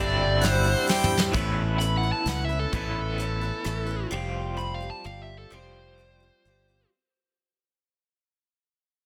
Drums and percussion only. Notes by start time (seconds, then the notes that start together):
0.44 snare, closed hi-hat
0.89 snare
1.04 mid tom
1.20 snare
1.34 kick, closed hi-hat
1.81 closed hi-hat
2.27 snare, closed hi-hat
2.73 kick, closed hi-hat
3.20 closed hi-hat
3.64 cross-stick, closed hi-hat